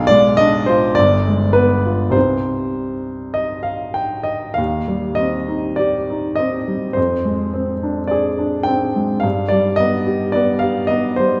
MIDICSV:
0, 0, Header, 1, 2, 480
1, 0, Start_track
1, 0, Key_signature, -3, "minor"
1, 0, Tempo, 1169591
1, 883, Tempo, 1214575
1, 1845, Time_signature, 4, 2, 24, 8
1, 2323, Tempo, 1176471
1, 2803, Tempo, 1125704
1, 4691, End_track
2, 0, Start_track
2, 0, Title_t, "Grand piano"
2, 0, Program_c, 0, 0
2, 0, Control_c, 0, 64, 127
2, 0, Note_on_c, 0, 35, 69
2, 0, Note_on_c, 0, 77, 95
2, 29, Note_on_c, 0, 74, 106
2, 44, Note_on_c, 0, 56, 57
2, 152, Note_on_c, 0, 75, 103
2, 154, Note_off_c, 0, 74, 0
2, 166, Note_on_c, 0, 62, 51
2, 233, Note_off_c, 0, 56, 0
2, 272, Note_on_c, 0, 72, 83
2, 276, Note_off_c, 0, 75, 0
2, 284, Note_on_c, 0, 65, 51
2, 355, Note_off_c, 0, 62, 0
2, 385, Note_off_c, 0, 35, 0
2, 390, Note_on_c, 0, 74, 96
2, 395, Note_off_c, 0, 72, 0
2, 402, Note_off_c, 0, 65, 0
2, 404, Note_on_c, 0, 31, 59
2, 405, Control_c, 0, 64, 0
2, 408, Note_off_c, 0, 77, 0
2, 471, Control_c, 0, 64, 127
2, 525, Note_on_c, 0, 56, 45
2, 628, Note_on_c, 0, 71, 88
2, 633, Note_off_c, 0, 74, 0
2, 641, Note_on_c, 0, 59, 47
2, 713, Note_off_c, 0, 56, 0
2, 761, Note_on_c, 0, 65, 37
2, 834, Note_off_c, 0, 59, 0
2, 863, Note_on_c, 0, 36, 45
2, 869, Note_on_c, 0, 55, 34
2, 869, Note_on_c, 0, 72, 75
2, 870, Note_off_c, 0, 31, 0
2, 875, Note_on_c, 0, 60, 36
2, 877, Note_off_c, 0, 71, 0
2, 879, Note_on_c, 0, 63, 32
2, 883, Note_off_c, 0, 65, 0
2, 890, Control_c, 0, 64, 0
2, 962, Control_c, 0, 64, 127
2, 1352, Note_on_c, 0, 75, 71
2, 1358, Note_off_c, 0, 72, 0
2, 1466, Note_on_c, 0, 77, 66
2, 1478, Note_off_c, 0, 75, 0
2, 1590, Note_on_c, 0, 79, 65
2, 1596, Note_off_c, 0, 77, 0
2, 1706, Note_on_c, 0, 75, 66
2, 1718, Note_off_c, 0, 79, 0
2, 1820, Note_off_c, 0, 36, 0
2, 1823, Note_off_c, 0, 55, 0
2, 1826, Note_off_c, 0, 60, 0
2, 1827, Note_on_c, 0, 77, 78
2, 1828, Note_off_c, 0, 63, 0
2, 1835, Note_off_c, 0, 75, 0
2, 1842, Note_on_c, 0, 39, 51
2, 1851, Control_c, 0, 64, 0
2, 1925, Control_c, 0, 64, 127
2, 1961, Note_on_c, 0, 55, 42
2, 2068, Note_on_c, 0, 75, 76
2, 2074, Note_off_c, 0, 77, 0
2, 2082, Note_on_c, 0, 60, 38
2, 2154, Note_off_c, 0, 55, 0
2, 2201, Note_on_c, 0, 63, 37
2, 2274, Note_off_c, 0, 60, 0
2, 2310, Note_on_c, 0, 74, 72
2, 2315, Note_off_c, 0, 75, 0
2, 2323, Note_on_c, 0, 67, 38
2, 2395, Note_off_c, 0, 63, 0
2, 2448, Note_on_c, 0, 63, 40
2, 2518, Note_off_c, 0, 67, 0
2, 2551, Note_on_c, 0, 75, 73
2, 2559, Note_off_c, 0, 74, 0
2, 2564, Note_on_c, 0, 60, 45
2, 2639, Note_off_c, 0, 63, 0
2, 2683, Note_on_c, 0, 55, 32
2, 2755, Note_off_c, 0, 60, 0
2, 2784, Note_off_c, 0, 39, 0
2, 2787, Note_on_c, 0, 72, 70
2, 2795, Note_off_c, 0, 75, 0
2, 2801, Note_off_c, 0, 55, 0
2, 2801, Note_on_c, 0, 41, 45
2, 2809, Control_c, 0, 64, 0
2, 2873, Control_c, 0, 64, 127
2, 2922, Note_on_c, 0, 56, 39
2, 3043, Note_on_c, 0, 60, 45
2, 3120, Note_off_c, 0, 56, 0
2, 3170, Note_on_c, 0, 62, 42
2, 3241, Note_off_c, 0, 60, 0
2, 3273, Note_on_c, 0, 74, 70
2, 3283, Note_off_c, 0, 72, 0
2, 3289, Note_on_c, 0, 68, 43
2, 3364, Note_off_c, 0, 62, 0
2, 3406, Note_on_c, 0, 62, 38
2, 3483, Note_off_c, 0, 68, 0
2, 3512, Note_on_c, 0, 79, 80
2, 3523, Note_off_c, 0, 74, 0
2, 3527, Note_on_c, 0, 60, 46
2, 3601, Note_off_c, 0, 62, 0
2, 3650, Note_on_c, 0, 56, 36
2, 3720, Note_off_c, 0, 60, 0
2, 3752, Note_on_c, 0, 77, 73
2, 3753, Note_off_c, 0, 41, 0
2, 3761, Note_off_c, 0, 79, 0
2, 3767, Note_on_c, 0, 43, 50
2, 3770, Note_off_c, 0, 56, 0
2, 3779, Control_c, 0, 64, 0
2, 3853, Control_c, 0, 64, 127
2, 3875, Note_on_c, 0, 74, 77
2, 3881, Note_off_c, 0, 77, 0
2, 3888, Note_on_c, 0, 55, 46
2, 3993, Note_on_c, 0, 75, 89
2, 4001, Note_off_c, 0, 74, 0
2, 4009, Note_on_c, 0, 59, 45
2, 4078, Note_off_c, 0, 55, 0
2, 4124, Note_on_c, 0, 67, 43
2, 4198, Note_off_c, 0, 59, 0
2, 4232, Note_on_c, 0, 74, 80
2, 4237, Note_off_c, 0, 75, 0
2, 4245, Note_on_c, 0, 59, 50
2, 4315, Note_off_c, 0, 67, 0
2, 4346, Note_on_c, 0, 77, 80
2, 4357, Note_off_c, 0, 74, 0
2, 4361, Note_on_c, 0, 67, 43
2, 4436, Note_off_c, 0, 59, 0
2, 4466, Note_on_c, 0, 75, 76
2, 4474, Note_off_c, 0, 77, 0
2, 4479, Note_on_c, 0, 59, 45
2, 4554, Note_off_c, 0, 67, 0
2, 4590, Note_on_c, 0, 72, 77
2, 4594, Note_off_c, 0, 75, 0
2, 4604, Note_on_c, 0, 55, 41
2, 4673, Note_off_c, 0, 59, 0
2, 4691, Note_off_c, 0, 43, 0
2, 4691, Note_off_c, 0, 55, 0
2, 4691, Note_off_c, 0, 72, 0
2, 4691, End_track
0, 0, End_of_file